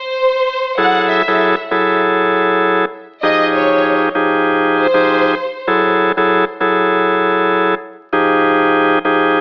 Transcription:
0.00 0.75 C5 medium
0.78 1.22 F#3 loud
0.78 1.22 E4 medium
0.78 1.22 G#4 medium
0.78 1.22 A4 loud
0.78 1.07 F#5 loud
1.09 1.54 E5 medium
1.28 1.55 F#3 loud
1.28 1.55 E4 medium
1.28 1.55 G#4 medium
1.28 1.55 A4 loud
1.71 2.85 F#3 medium
1.71 2.85 E4 medium
1.71 2.85 G#4 medium
1.71 2.85 A4 medium
3.22 4.09 F3 medium
3.22 4.09 D#4 medium
3.22 4.09 G4 medium
3.22 4.09 G#4 loud
3.22 3.50 D#5 loud
3.55 4.00 C#5 medium
4.15 4.87 F3 medium
4.15 4.87 D#4 medium
4.15 4.87 G4 medium
4.15 4.87 G#4 medium
4.75 5.63 C5 medium
4.94 5.34 F3 medium
4.94 5.35 D#4 medium
4.94 5.35 G4 medium
4.94 5.35 G#4 loud
5.67 6.12 F#3 medium
5.67 6.12 E4 medium
5.67 6.12 G#4 medium
5.67 6.12 A4 loud
6.17 6.45 F#3 loud
6.17 6.45 E4 medium
6.17 6.45 G#4 medium
6.17 6.45 A4 loud
6.60 7.75 F#3 medium
6.60 7.75 E4 medium
6.60 7.75 G#4 medium
6.60 7.75 A4 medium
8.13 8.99 F3 medium
8.13 8.99 D#4 medium
8.13 8.99 G4 medium
8.13 8.99 G#4 loud
9.05 9.41 F3 medium
9.05 9.41 D#4 medium
9.05 9.41 G4 medium
9.05 9.41 G#4 loud

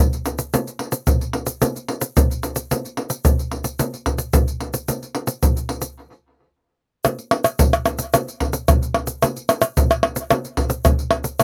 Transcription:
0.13 pandeiro soft
0.13 shaker soft
0.26 pandeiro medium
0.26 shaker medium
0.39 pandeiro medium
0.39 shaker medium
0.54 pandeiro medium
0.54 shaker medium
0.54 surdo medium
0.67 pandeiro soft
0.67 shaker soft
0.79 pandeiro medium
0.92 pandeiro medium
0.92 shaker medium
1.07 pandeiro medium
1.07 shaker medium
1.07 surdo medium
1.21 pandeiro soft
1.21 shaker soft
1.33 pandeiro medium
1.46 pandeiro soft
1.46 shaker medium
1.62 pandeiro medium
1.62 shaker medium
1.62 surdo medium
1.76 pandeiro soft
1.76 shaker soft
1.88 pandeiro medium
2.01 pandeiro medium
2.01 shaker medium
2.17 pandeiro medium
2.17 shaker medium
2.17 surdo medium
2.31 pandeiro soft
2.31 shaker soft
2.43 pandeiro medium
2.43 shaker medium
2.56 pandeiro medium
2.56 shaker medium
2.71 pandeiro medium
2.71 shaker medium
2.71 surdo medium
2.85 pandeiro soft
2.85 shaker soft
2.97 pandeiro medium
3.10 pandeiro medium
3.10 shaker medium
3.25 pandeiro medium
3.25 shaker medium
3.25 surdo medium
3.39 pandeiro soft
3.39 shaker soft
3.52 pandeiro medium
3.64 pandeiro medium
3.64 shaker medium
3.79 pandeiro medium
3.79 shaker medium
3.79 surdo medium
3.94 pandeiro soft
3.94 shaker soft
4.06 pandeiro medium
4.06 surdo medium
4.18 pandeiro medium
4.18 shaker medium
4.33 pandeiro medium
4.33 shaker medium
4.33 surdo medium
4.48 pandeiro soft
4.48 shaker soft
4.61 pandeiro medium
4.74 pandeiro medium
4.74 shaker medium
4.88 pandeiro medium
4.88 shaker medium
4.88 surdo medium
5.03 pandeiro soft
5.03 shaker soft
5.15 pandeiro medium
5.27 pandeiro medium
5.27 shaker medium
5.43 pandeiro medium
5.43 shaker medium
5.43 surdo medium
5.57 pandeiro soft
5.57 shaker soft
5.69 pandeiro medium
5.82 pandeiro soft
5.82 shaker medium
7.05 pandeiro medium
7.05 tamborim medium
7.05 shaker medium
7.05 surdo medium
7.19 pandeiro soft
7.19 shaker soft
7.31 pandeiro medium
7.31 tamborim medium
7.44 pandeiro medium
7.44 tamborim medium
7.44 shaker medium
7.59 pandeiro medium
7.59 shaker medium
7.59 surdo loud
7.73 pandeiro soft
7.73 tamborim medium
7.73 shaker soft
7.86 pandeiro medium
7.86 tamborim medium
7.86 shaker medium
7.99 pandeiro medium
7.99 shaker medium
8.14 pandeiro medium
8.14 tamborim medium
8.14 shaker medium
8.14 surdo medium
8.28 pandeiro soft
8.28 shaker soft
8.40 pandeiro medium
8.40 surdo medium
8.53 pandeiro medium
8.53 shaker medium
8.68 pandeiro medium
8.68 tamborim medium
8.68 shaker medium
8.68 surdo loud
8.83 pandeiro soft
8.83 shaker soft
8.94 pandeiro medium
8.94 tamborim medium
9.07 pandeiro medium
9.07 shaker medium
9.22 pandeiro medium
9.22 tamborim medium
9.22 shaker medium
9.22 surdo medium
9.37 pandeiro soft
9.37 shaker soft
9.49 pandeiro medium
9.49 tamborim medium
9.49 shaker medium
9.62 pandeiro medium
9.62 tamborim medium
9.62 shaker medium
9.77 pandeiro medium
9.77 shaker medium
9.77 surdo medium
9.91 pandeiro soft
9.91 tamborim medium
9.91 shaker soft
10.03 pandeiro medium
10.03 tamborim medium
10.16 pandeiro medium
10.16 shaker medium
10.30 pandeiro medium
10.30 tamborim medium
10.30 shaker medium
10.30 surdo medium
10.45 pandeiro soft
10.45 shaker soft
10.57 pandeiro medium
10.57 surdo medium
10.70 pandeiro medium
10.70 shaker medium
10.85 pandeiro medium
10.85 tamborim medium
10.85 shaker medium
10.85 surdo loud
10.99 pandeiro soft
10.99 shaker soft
11.11 pandeiro medium
11.11 tamborim medium
11.24 pandeiro medium
11.24 shaker medium
11.40 pandeiro medium
11.40 tamborim medium
11.40 shaker medium
11.40 surdo medium

